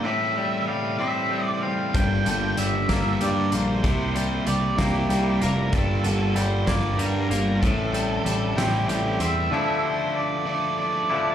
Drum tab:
HH |------|xxxxxx|xxxxxx|xxxxxx|
SD |------|---o--|---o--|---o--|
BD |------|o--o--|o--o--|o--o--|

HH |xxxxxx|------|
SD |---o--|------|
BD |o-----|------|